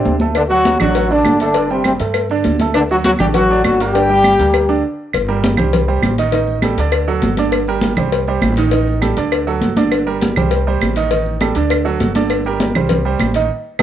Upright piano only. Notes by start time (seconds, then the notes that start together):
Already playing: D3 D4 D5
0.21 A3 A4 A5
0.50 F#3 F#4 F#5
0.80 D3 D4 D5
0.96 F#3 F#4 F#5
1.11 D3 D4 D5
1.41 A3 A4 A5
1.56 D3 D4 D5
1.70 G3 G4 G5
2.00 A3 A4 A5
2.31 D3 D4 D5
2.61 A3 A4 A5
2.91 F#3 F#4 F#5
3.19 D3 D4 D5
3.35 F#3 F#4 F#5
3.50 D3 D4 D5
3.81 A#3 A#4 A#5
3.95 D3 D4 D5
4.09 G3 G4 G5
4.40 A#3 A#4 A#5
4.69 D3 D4 D5
5.28 G3 G4 A#4
5.58 G3 G4 C5
5.88 G3 G4 C5
6.18 D#3 D#4 D#5
6.33 D#3 D#4 D#5
6.63 G3 G4 A4
6.78 D3 D4 D5
7.08 F#3 F#4 A4
7.38 D3 D4 D5
7.68 G3 G4 A#4
7.97 G3 G4 C5
8.28 G3 G4 C5
8.58 D#3 D#4 D#5
8.73 D#3 D#4 D#5
9.02 G3 G4 A4
9.17 D3 D4 D5
9.47 F#3 F#4 A4
9.77 D3 D4 D5
10.07 G3 G4 A#4
10.37 G3 G4 C5
10.67 G3 G4 C5
10.96 D#3 D#4 D#5
11.11 D#3 D#4 D#5
11.41 G3 G4 A4
11.56 D3 D4 D5
11.85 F#3 F#4 A4
12.15 D3 D4 D5
12.46 G3 G4 A#4
12.76 G3 G4 C5
13.05 G3 G4 C5
13.36 D#3 D#4 D#5